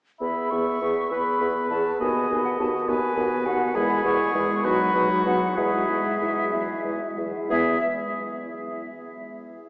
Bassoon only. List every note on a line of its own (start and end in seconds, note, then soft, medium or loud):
0.20 0.34 E2 soft
0.52 0.65 E2 soft
0.81 0.95 E2 soft
1.11 1.24 E2 soft
1.41 1.54 E2 soft
1.70 1.84 E2 soft
2.00 2.13 D#2 soft
2.30 2.43 D#2 soft
2.59 2.72 D#2 soft
2.88 3.01 D#2 medium
3.17 3.30 D#2 soft
3.46 3.59 D#2 medium
3.75 3.88 E2 medium
4.04 4.18 E2 soft
4.34 4.47 E2 medium
4.64 4.77 B2 medium
4.94 5.08 B2 medium
5.26 5.40 B2 medium
5.57 5.71 E2 medium
5.89 6.03 E2 soft
6.21 6.35 E2 soft
6.53 6.67 E2 soft
6.84 6.99 E2 soft
7.18 7.32 E2 soft
7.50 7.77 E2 medium